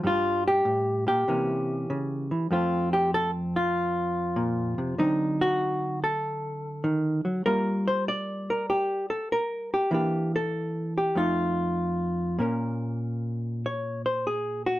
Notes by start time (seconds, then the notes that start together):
0.03 G2 G3 D4 F4
0.48 G4
0.65 A2
1.07 A#2 G4
1.28 C3 E3 A#3 C#4
1.90 C#3
2.31 E3
2.51 F2 F3 A3 C4 F4
2.93 G4
3.14 A4
3.56 F4
4.36 A#2
4.78 C3
4.98 D3 F#3 C4 D#4
5.41 F#4
6.04 A4
6.84 D#3
7.25 F#3
7.46 G3 A#3 F4 A#4
7.88 C5
8.08 D5
8.50 A#4
8.70 G4
9.10 A4
9.32 A#4
9.74 G4
9.91 E3 A#3 D4 G4
10.36 A4
10.98 G4
11.15 F2 A3 D#4 F4
12.39 A#2 A#3 C#4 A#4
13.66 C#5
14.06 C5
14.27 G#4
14.66 F#4